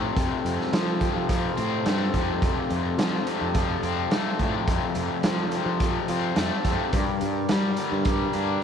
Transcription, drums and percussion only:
0.17 kick, closed hi-hat
0.46 closed hi-hat
0.61 snare
0.73 snare, closed hi-hat
1.01 kick, closed hi-hat
1.29 kick, closed hi-hat
1.57 closed hi-hat
1.86 snare, closed hi-hat
2.14 kick, snare, closed hi-hat
2.42 kick, closed hi-hat
2.70 closed hi-hat
2.99 snare, closed hi-hat
3.27 closed hi-hat
3.54 kick, closed hi-hat
3.83 closed hi-hat
4.11 snare, closed hi-hat
4.39 kick, closed hi-hat
4.68 kick, closed hi-hat
4.95 closed hi-hat
5.23 snare, closed hi-hat
5.51 closed hi-hat
5.80 kick, closed hi-hat
6.08 closed hi-hat
6.36 snare, closed hi-hat
6.65 kick, snare, closed hi-hat
6.93 kick, closed hi-hat
7.21 closed hi-hat
7.49 snare, closed hi-hat
7.77 closed hi-hat
8.05 kick, closed hi-hat
8.33 closed hi-hat

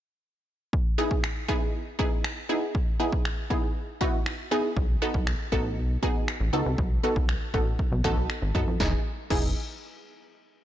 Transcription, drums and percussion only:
0.73 kick
1.11 kick
1.24 finger snap
1.49 kick
1.99 kick
2.24 finger snap
2.75 kick
3.13 kick
3.25 finger snap
3.50 kick
4.01 kick
4.26 finger snap
4.77 kick
5.14 kick
5.27 finger snap
5.52 kick
6.03 kick
6.28 finger snap
6.78 kick
7.16 kick
7.29 finger snap
7.54 kick
7.79 kick
8.04 kick
8.30 finger snap
8.55 kick
8.80 kick, snare
9.30 kick, crash

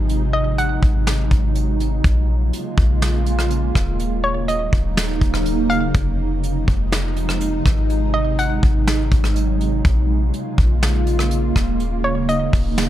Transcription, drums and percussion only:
0.09 closed hi-hat
0.58 closed hi-hat
0.83 kick
1.07 snare, closed hi-hat
1.31 kick, closed hi-hat
1.55 closed hi-hat
1.80 closed hi-hat
2.04 kick, closed hi-hat
2.53 closed hi-hat
2.78 kick
3.02 snare, closed hi-hat
3.26 closed hi-hat
3.39 cross-stick
3.51 closed hi-hat
3.75 kick, cross-stick, closed hi-hat
4.00 closed hi-hat
4.48 closed hi-hat
4.73 kick
4.97 snare, closed hi-hat
5.21 kick, closed hi-hat
5.34 cross-stick
5.46 closed hi-hat
5.70 closed hi-hat
5.95 kick, closed hi-hat
6.43 closed hi-hat
6.68 kick
6.92 snare, closed hi-hat
7.16 closed hi-hat
7.29 cross-stick
7.41 closed hi-hat
7.65 kick, cross-stick, closed hi-hat
7.90 closed hi-hat
8.39 closed hi-hat
8.63 kick
8.87 snare, closed hi-hat
9.11 kick, closed hi-hat
9.24 cross-stick
9.36 closed hi-hat
9.61 closed hi-hat
9.85 kick, closed hi-hat
10.34 closed hi-hat
10.58 kick
10.82 snare, closed hi-hat
11.07 closed hi-hat
11.19 cross-stick
11.31 closed hi-hat
11.56 kick, cross-stick, closed hi-hat
11.80 closed hi-hat
12.29 closed hi-hat
12.53 kick, open hi-hat
12.78 snare, closed hi-hat

